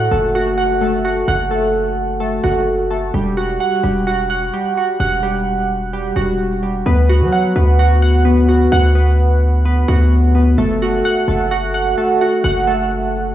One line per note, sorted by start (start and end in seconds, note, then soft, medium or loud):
0.00 0.10 A3 medium
0.00 0.34 F#4 medium
0.00 0.56 F#5 loud
0.11 1.24 F#1 loud
0.11 0.80 A3 medium
0.35 1.03 F#4 loud
0.58 1.27 F#5 medium
0.81 1.50 A3 medium
1.05 2.42 F#4 medium
1.28 2.40 F#1 loud
1.28 2.67 F#5 loud
1.51 2.19 A3 medium
2.20 2.89 A3 medium
2.44 3.11 F#1 loud
2.44 3.14 F#4 medium
2.91 3.14 A3 medium
3.14 3.59 E1 loud
3.14 3.82 G3 medium
3.37 4.06 F#4 medium
3.60 4.29 F#5 loud
3.83 4.51 E1 loud
3.83 4.52 G3 medium
4.07 4.76 F#4 loud
4.30 4.99 F#5 loud
4.53 5.22 G3 medium
4.77 6.15 F#4 medium
5.00 6.12 E1 loud
5.00 6.40 F#5 loud
5.23 5.92 G3 medium
5.93 6.62 G3 medium
6.16 6.83 E1 loud
6.16 6.86 F#4 medium
6.63 6.86 G3 medium
6.86 7.22 D2 loud
6.86 7.54 B3 medium
7.09 7.78 F#4 medium
7.21 7.54 F#3 loud
7.32 8.01 F#5 medium
7.56 8.68 D2 loud
7.56 8.24 B3 medium
7.79 8.47 F#4 medium
8.02 8.71 F#5 medium
8.25 8.94 B3 medium
8.49 9.87 F#4 medium
8.72 9.84 D2 loud
8.72 10.12 F#5 loud
8.95 9.64 B3 medium
9.65 10.34 B3 medium
9.88 10.55 D2 loud
9.88 10.58 F#4 medium
10.35 10.58 B3 medium
10.58 11.03 F#1 loud
10.58 11.27 A3 medium
10.82 11.50 F#4 medium
11.05 11.73 F#5 loud
11.28 11.95 F#1 loud
11.28 11.96 A3 medium
11.51 12.20 F#4 medium
11.74 12.43 F#5 medium
11.98 12.66 A3 medium
12.21 13.35 F#4 medium
12.44 13.35 F#1 loud
12.44 13.35 F#5 loud
12.67 13.35 A3 medium